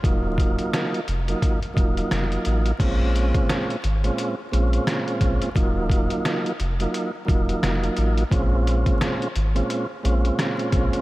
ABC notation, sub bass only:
X:1
M:4/4
L:1/16
Q:"Swing 16ths" 1/4=87
K:Bbm
V:1 name="Sub bass" clef=bass
E,,,4 z2 F,,,2 z2 E,,,2 F,,,2 =A,,,2 | B,,,4 z2 A,,,2 z2 B,,,2 z2 B,,, z | E,,,4 z2 F,,,2 z2 E,,,2 F,,,2 =A,,,2 | B,,,4 z2 A,,,2 z2 B,,,2 z2 B,,, z |]